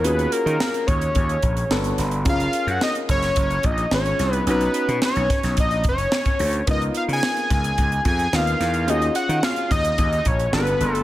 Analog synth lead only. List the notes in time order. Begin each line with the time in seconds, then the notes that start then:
0.04 B4
0.32 A#4
0.87 C#5
2.29 F5
2.71 F#5
2.83 D#5
3.11 C#5
3.65 D#5
3.94 C#5
4.33 B4
4.50 B4
5.05 C#5
5.60 D#5
5.89 C#5
6.71 D#5
6.97 F5
7.13 G#5
7.53 G#5
8.08 G#5
8.35 F5
8.89 D#5
9.16 F#5
9.44 F5
9.72 D#5
10.27 C#5
10.54 B4
10.94 A4